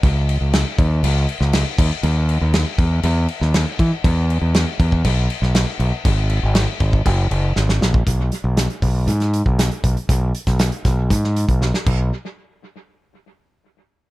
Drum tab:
CC |x-x-x-x-x-x-x-x-|x-x-x-x-x-x-x-x-|x-x-x-x-x-x-x-x-|x-x-x-x-x-x-----|
HH |----------------|----------------|----------------|----------------|
SD |----o------oo---|----o------oo---|----o------oo---|----o-------ooo-|
BD |o-----o-------o-|------o-------o-|o-----ooo-------|o-----ooo------o|

CC |----------------|--------------x-|----------------|
HH |x-x-xxo-xxx-xxxx|x-xxxxx-x-xx----|----------------|
SD |----o----o--o---|---oo-o--o--oo--|----------------|
BD |o-----o----o--o-|o--o--o-o--o--o-|----------------|